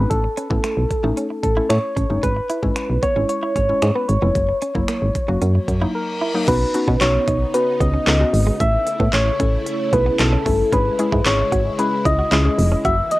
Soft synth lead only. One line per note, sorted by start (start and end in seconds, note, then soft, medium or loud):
0.00 0.12 B4 medium
0.10 1.42 A4 loud
1.43 1.68 A4 medium
1.69 2.24 C#5 loud
2.23 3.02 B4 loud
3.03 3.27 C#5 loud
3.29 3.41 C#5 medium
3.42 3.55 C#5 medium
3.56 3.97 C#5 loud
3.95 4.08 B4 medium
4.09 5.91 C#5 loud
5.95 6.50 A#4 medium
6.48 7.02 B4 medium
7.01 7.56 C#5 medium
7.54 7.80 B4 loud
7.81 8.62 D#5 loud
8.60 9.15 E5 loud
9.14 9.93 C#5 loud
9.93 10.21 B4 loud
10.19 10.72 A4 loud
10.73 11.28 B4 loud
11.26 11.81 C#5 loud
11.79 12.05 B4 loud
12.05 12.86 D#5 loud
12.85 13.13 E5 loud
13.11 13.20 D#5 loud